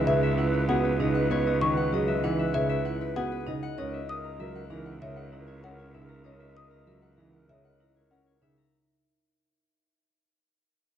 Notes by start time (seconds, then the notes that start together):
Already playing: C#2 D#5 E5 F#5
0.07 C#3 B4 C#5 E5
0.11 B4
0.23 E5
0.38 E4 F#5
0.43 B4
0.54 B4
0.69 B3 F#4 G#4 F#5
0.76 B4
0.85 B4
1.00 C#3 D#4 D#5
1.07 B4
1.15 F#5
1.30 B3 B4 C#5
1.38 B4
1.47 D#5
1.61 D#3 C#5 C#6
1.70 B4
1.77 F#5
1.93 F#3 G#4 D#5
2.03 B4
2.08 E5
2.24 E3 D#4 F#5
2.33 B4
2.39 E5
2.54 C#3 B4 C#5 E5
2.67 B4 E5
2.85 E4 F#5
2.98 B4
3.16 B3 F#4 G#4 F#5
3.31 B4
3.47 C#3 D#4 D#5
3.63 F#5
3.77 C#2 C#4 A#4 C#5 D#5
3.94 E5
4.08 A#4 D#5 D#6
4.24 A#5
4.39 F#3 A#4 E5
4.55 F#5
4.70 E3 D#4 A#4 A#5
4.86 F#5
5.01 C#3 C#5 D#5 E5
5.06 A#4
5.16 F#5
5.32 E4 A#5
5.38 A#4
5.47 C#5
5.63 C#4 A#4 F#5
5.69 A#4
5.78 C#5
5.94 C#3 D#4 E5
6.02 A#4
6.08 A#5
6.24 C#4 C#5 D#5
6.34 A#4
6.40 E5
6.55 D#5 D#6
6.66 A#4
6.71 A#5
6.87 F#3 A#4 E5
6.99 A#4 F#5
7.17 E3 D#4 A#5
7.31 A#4 F#5
7.48 C#3 C#5 D#5 E5
7.62 A#4 F#5
7.80 E4 A#5
7.95 A#4 C#5
8.11 C#4 A#4 F#5
8.26 A#4 C#5
8.41 C#3 D#4 E5
8.58 A#5